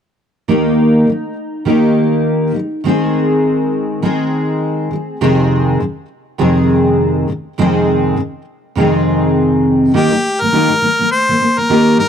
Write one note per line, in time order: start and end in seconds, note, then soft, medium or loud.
0.48 1.07 D#3 medium
0.48 1.08 A#3 medium
0.48 1.66 D#4 medium
0.48 1.08 G4 medium
1.07 1.33 D#3 soft
1.07 1.34 A#3 soft
1.65 2.54 D#3 medium
1.65 2.55 A#3 medium
1.65 2.85 D#4 medium
1.65 2.55 G4 medium
2.54 2.80 D#3 soft
2.54 2.81 G#3 soft
2.84 4.02 D#3 medium
2.84 4.02 G#3 medium
2.84 4.03 C4 medium
2.84 4.03 G#4 medium
4.02 4.90 D#3 medium
4.02 4.93 G#3 medium
4.02 5.21 C4 medium
4.02 5.22 G#4 medium
4.91 5.16 D#3 soft
4.91 5.17 G#3 soft
5.21 5.79 F2 medium
5.21 5.79 C3 medium
5.21 5.81 D#3 medium
5.21 5.80 G#3 medium
5.21 5.80 C4 medium
5.21 5.80 G#4 medium
5.80 6.05 F2 soft
5.80 6.05 C3 soft
5.80 6.06 D#3 soft
6.38 7.27 F2 medium
6.38 7.27 C3 medium
6.38 7.29 D#3 medium
6.38 7.28 G#3 medium
6.38 7.28 C4 medium
6.38 7.28 G#4 medium
7.28 7.52 F2 soft
7.28 7.53 C3 soft
7.28 7.53 D#3 soft
7.58 8.15 F2 medium
7.58 8.16 C3 medium
7.58 8.18 D#3 medium
7.58 8.17 G#3 medium
7.58 8.17 C4 medium
7.58 8.17 G#4 medium
8.16 8.41 F2 soft
8.16 8.41 C3 medium
8.16 8.42 D#3 medium
8.75 9.93 F2 medium
8.75 9.93 C3 medium
8.75 9.93 D#3 medium
8.75 9.94 G#3 medium
8.75 9.94 C4 medium
8.75 9.95 G#4 medium
9.94 10.10 D#3 medium
9.94 10.11 A#3 medium
9.94 10.11 D#4 medium
9.94 10.42 G4 medium
9.94 10.12 G4 medium
10.11 10.33 D#3 soft
10.11 10.34 A#3 soft
10.41 10.51 D#3 soft
10.41 10.52 A#3 soft
10.41 11.11 A#4 medium
10.52 10.68 D#3 medium
10.52 10.70 A#3 medium
10.52 10.71 D#4 medium
10.52 10.71 G4 medium
10.70 10.80 D#3 soft
10.70 10.82 A#3 soft
10.82 10.98 D#3 soft
10.82 11.00 A#3 medium
10.99 11.22 D#3 soft
10.99 11.22 A#3 soft
11.12 11.60 C5 medium
11.29 11.39 D#3 soft
11.29 11.41 A#3 soft
11.40 11.56 D#3 soft
11.40 11.59 A#3 medium
11.58 11.68 D#3 soft
11.58 11.69 A#3 soft
11.58 11.99 A#4 medium
11.69 11.98 D#3 medium
11.69 12.00 A#3 medium
11.69 12.00 D#4 medium
11.69 12.00 G4 medium
11.99 12.09 D#3 medium
11.99 12.09 G#3 medium
11.99 12.09 A#4 medium